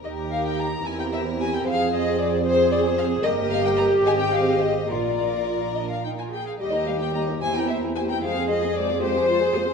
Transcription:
<<
  \new Staff \with { instrumentName = "Violin section" } { \time 6/8 \key ees \major \tempo 4. = 74 ees''8 f''16 g''16 bes''8 aes''16 g''16 e''8 aes''16 g''16 | f''8 ees''8 d''8 c''8 d''8 f''8 | ees''8 f''16 g''16 bes''8 aes''16 g''16 f''8 ees''8 | d''4. ees''16 f''16 g''16 aes''16 g''16 f''16 |
ees''8 f''16 g''16 bes''8 aes''16 g''16 e''8 aes''16 g''16 | f''8 ees''8 d''8 c''4. | }
  \new Staff \with { instrumentName = "Violin section" } { \time 6/8 \key ees \major bes'4. bes'4. | c''4. c''4. | ees''4. ees''4. | bes'2~ bes'8. r16 |
ees''16 bes'16 ees''16 bes'16 ees''16 bes'16 c''16 bes'16 c''16 bes'16 c''16 bes'16 | c''16 aes'16 c''16 aes'16 c''16 aes'16 c''16 aes'16 c''16 aes'16 c''16 aes'16 | }
  \new Staff \with { instrumentName = "Cello section" } { \time 6/8 \key ees \major g'4. e'4. | aes'4. aes'4. | g'2. | f'4. d'8 ees'16 f'16 aes'8 |
g'4. e'4. | aes'4. g'8 f'8 aes'8 | }
  \new Staff \with { instrumentName = "Viola section" } { \time 6/8 \key ees \major <ees' g'>4. <c' g'>4. | <c' aes'>4. <c' aes'>4. | <bes bes'>4. <c' aes'>4. | <bes f'>2~ <bes f'>8. r16 |
<g g'>16 <bes ees'>16 <g g'>16 <bes ees'>16 <g g'>16 <bes ees'>16 <bes g'>16 <c' e'>16 <bes g'>16 <c' e'>16 <bes g'>16 <c' e'>16 | <aes f'>16 <c' aes'>16 <aes f'>16 <c' aes'>16 <aes f'>16 <c' aes'>16 <aes f'>16 <c' aes'>16 <aes f'>16 <c' aes'>16 <aes f'>16 <c' aes'>16 | }
  \new Staff \with { instrumentName = "Double bass section" } { \clef bass \time 6/8 \key ees \major ees,4. e,4. | f,2. | g,,4. aes,,4. | bes,,2~ bes,,8 r8 |
ees,4. e,4. | f,2. | }
>>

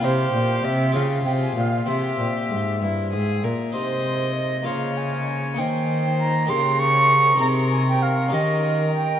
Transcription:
<<
  \new Staff \with { instrumentName = "Flute" } { \time 6/8 \key c \phrygian \tempo 4. = 65 c''4 e''8 f''8 g''16 aes''16 f''8 | e''2~ e''8 r8 | \key ees \mixolydian c''4 ees''8 f''8 aes''4 | g''4 bes''8 c'''8 des'''4 |
bes''8 aes''16 g''16 f''8 ees''4 g''8 | }
  \new Staff \with { instrumentName = "Violin" } { \time 6/8 \key c \phrygian g'4. f'4. | g'4. e'8 aes'8 bes'8 | \key ees \mixolydian ees''4. des''4. | c''4. bes'4.~ |
bes'4. bes'4. | }
  \new Staff \with { instrumentName = "Harpsichord" } { \time 6/8 \key c \phrygian <e' bes'>4. <f' aes'>4. | <c' c''>2. | \key ees \mixolydian <ees' c''>4. <bes f' bes'>4. | <bes ees' bes'>4. <bes ees' g'>4. |
<c' ees' aes'>4. <des' ees' g'>4. | }
  \new Staff \with { instrumentName = "Harpsichord" } { \clef bass \time 6/8 \key c \phrygian c8 bes,8 c8 des8 c8 bes,8 | c8 bes,8 aes,8 g,8 aes,8 bes,8 | \key ees \mixolydian c4. des4. | ees4. des4. |
c4. ees4. | }
  \new Staff \with { instrumentName = "Cello" } { \clef bass \time 6/8 \key c \phrygian c8 bes,8 c8 des8 c8 bes,8 | c8 bes,8 aes,8 g,8 aes,8 bes,8 | \key ees \mixolydian c4. des4. | ees4. des4. |
c4. ees4. | }
>>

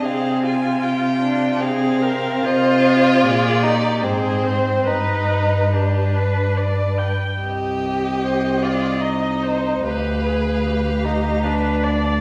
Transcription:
<<
  \new Staff \with { instrumentName = "Violin" } { \time 3/4 \key c \minor \tempo 4 = 73 f''8 aes''8 g''4 f''4 | ees''4 d''4 c''4 | b'2~ b'8. r16 | ees''2. |
f''2. | }
  \new Staff \with { instrumentName = "Viola" } { \time 3/4 \key c \minor aes'8 f'4. aes'8 bes'8 | c''4 aes'8 g'8 aes'8 c''8 | b'4 g'8 b'8 d''8 g''8 | r4 c''8 d''8 ees''8 c''8 |
g'8 aes'8 g'4 b'8 d''8 | }
  \new Staff \with { instrumentName = "Violin" } { \time 3/4 \key c \minor c'4 r8 d'8 c'4 | f'4. ees'8 c'4 | ees'4 d'4. r8 | g'4. f'8 ees'4 |
b'4. ees'8 d'4 | }
  \new Staff \with { instrumentName = "Cello" } { \clef bass \time 3/4 \key c \minor c2. | c4 bes,4 aes,4 | g,2~ g,8. r16 | c,2. |
d,2. | }
>>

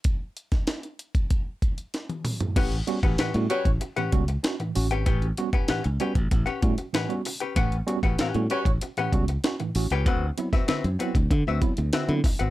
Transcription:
<<
  \new Staff \with { instrumentName = "Hollow-body jazz guitar" } { \time 4/4 \key a \mixolydian \tempo 4 = 96 r1 | <cis' g' b' fis''>16 r8 <cis' g' b' fis''>16 <cis' g' b' fis''>16 r16 <cis' g' b' g''>16 r8 <cis' g' b' fis''>16 r4 r16 <cis' g' b' g''>16 | <cis' g' b' g''>16 r8 <cis' g' b' fis''>16 <cis' g' b' fis''>16 r16 <cis' g' b' g''>16 r8 <cis' g' b' fis''>16 r8 <cis' g' b' fis''>16 r8 <cis' g' b' g''>16 | <cis' g' b' fis''>16 r8 <cis' g' b' fis''>16 <cis' g' b' fis''>16 r16 <cis' g' b' g''>16 r8 <cis' g' b' fis''>16 r4 r16 <cis' g' b' g''>16 |
<c' fis' b' fis''>16 r8 <c' fis' b' e''>16 <c' fis' b' e''>16 r16 <c' fis' b' fis''>16 r8 <c' fis' b' e''>16 r8 <c' fis' b' e''>16 r8 <c' fis' b' fis''>16 | }
  \new Staff \with { instrumentName = "Horn section" } { \time 4/4 \key a \mixolydian r1 | r4. <g fis' cis''>8 r2 | r1 | r4. <g fis' cis''>8 r2 |
r1 | }
  \new Staff \with { instrumentName = "Tine electric piano" } { \time 4/4 \key a \mixolydian r1 | <a, e>16 r16 <g b cis' fis'>16 r16 <a, e>16 <g b cis' fis'>16 r8 <cis' fis'>16 <a, e>16 <g b cis' fis'>16 r16 <cis' fis'>16 <a, e>16 <cis' fis'>16 r16 | <a, e>16 <cis' fis'>16 <g b cis' fis'>16 r16 <a, e>16 r16 <g b cis' fis'>16 <cis' fis'>16 <a, e>16 r16 <g b cis' fis'>16 <cis' fis'>16 <a, e>16 <g b cis' fis'>16 <cis' fis'>16 r16 | <a, e>16 r16 <g b cis' fis'>16 r16 <a, e>16 <g b cis' fis'>16 <cis' fis'>16 r16 <cis' fis'>16 <a, e>16 <g b cis' fis'>16 r16 <cis' fis'>16 <a, e>16 <cis' fis'>16 r16 |
d16 <c' e'>16 <fis b c' e'>16 r16 d16 r16 <fis b c' e'>16 <c' e'>16 d16 r16 <fis b c' e'>16 <c' e'>16 d16 <fis b c' e'>16 c'16 r16 | }
  \new Staff \with { instrumentName = "Fingered electric bass" } { \clef bass \time 4/4 \key a \mixolydian r1 | a,,8 r16 a,,16 r16 a,16 r16 a,,16 r8 cis,8 r8 a,,16 gis,,16 | a,,8 r8. cis,16 r16 a,,16 a,,16 r16 a,16 r4 r16 | a,,8 r16 a,,16 r16 a,16 r16 a,,16 r8 cis,8 r8 a,,16 cis,16 |
d,8 r8. fis,16 r16 d,16 d16 d,16 r16 d,16 r16 d16 r16 gis,,16 | }
  \new DrumStaff \with { instrumentName = "Drums" } \drummode { \time 4/4 <hh bd>8 hh16 <hh bd sn>16 <hh sn>16 hh16 hh16 <hh bd>16 <hh bd>8 <hh bd>16 hh16 <hh sn>16 <hh tommh>16 <hho toml>16 <hh tomfh>16 | <cymc hh bd>16 hh16 hh16 <hh bd>16 <hh sn>16 hh16 hh16 <hh bd>16 hh16 hh16 <hh bd>16 hh16 <hh sn>16 hh16 hho16 hh16 | <hh bd>16 hh16 hh16 <hh bd>16 <hh sn>16 hh16 hh16 <hh bd>16 <hh bd>16 hh16 <hh bd>16 hh16 <hh sn>16 hh16 hho16 hh16 | <hh bd>16 hh16 hh16 <hh bd>16 <hh sn>16 hh16 hh16 <hh bd>16 hh16 hh16 <hh bd>16 hh16 <hh sn>16 hh16 hho16 hh16 |
<hh bd>8 hh16 <hh bd sn>16 <hh sn>16 hh16 hh16 <hh bd>16 <hh bd>8 <hh bd>16 hh16 <hh sn>16 hh16 <hho bd sn>16 hh16 | }
>>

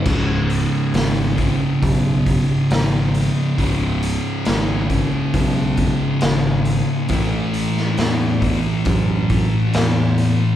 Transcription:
<<
  \new Staff \with { instrumentName = "Distorted electric guitar" } { \clef bass \time 4/4 \key cis \minor \tempo 4 = 68 <cis, gis, cis>4. <cis, gis, cis>2~ <cis, gis, cis>8 | <cis, gis, cis>4. <cis, gis, cis>2~ <cis, gis, cis>8 | <a, e a>4. <a, e a>2~ <a, e a>8 | }
  \new Staff \with { instrumentName = "Distorted electric guitar" } { \clef bass \time 4/4 \key cis \minor <cis, gis, cis>1 | <cis, gis, cis>1 | <a, e a>1 | }
  \new Staff \with { instrumentName = "Picked electric bass" } { \clef bass \time 4/4 \key cis \minor cis,,4 gis,,4 b,,4 gis,,4 | cis,,4 gis,,4 b,,4 gis,,4 | a,,4 e,4 fis,4 e,4 | }
  \new DrumStaff \with { instrumentName = "Drums" } \drummode { \time 4/4 <cymc bd>8 hho8 <hho sn>8 <hho bd>8 <hho bd>8 <hho bd>8 <hho sn>8 hho8 | <hho bd>8 hho8 <hho sn>8 <hho bd>8 <hho bd>8 <hho bd>8 <hho sn>8 hho8 | <hho bd>8 hho16 sn16 <hho sn>8 <hho bd>8 <hho bd>8 <hho bd>8 <hho sn>8 hho8 | }
>>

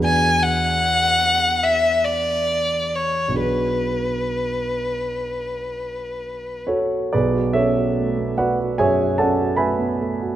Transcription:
<<
  \new Staff \with { instrumentName = "Violin" } { \time 4/4 \key b \dorian \tempo 4 = 72 gis''8 fis''4. e''8 d''4 cis''8 | b'2.~ b'8 r8 | r1 | }
  \new Staff \with { instrumentName = "Grand piano" } { \time 4/4 \key b \dorian << { r1 | r2. r8 <fis' a' cis''>8 | <gis' b' d''>8 <a' cis'' e''>4 <fis' b' d'' fis''>8 <gis' cis'' e'' gis''>8 <a' d'' fis'' a''>8 <b' e'' gis'' b''>4 | } \\ { <e, d' fis' gis' b'>1 | <b,, d' fis' gis' b'>1 | b,,16 fis'16 cis'16 fis'16 a16 b16 a16 fis'16 fis,16 fis'16 cis'16 fis'16 a16 b16 a16 fis'16 | } >> }
>>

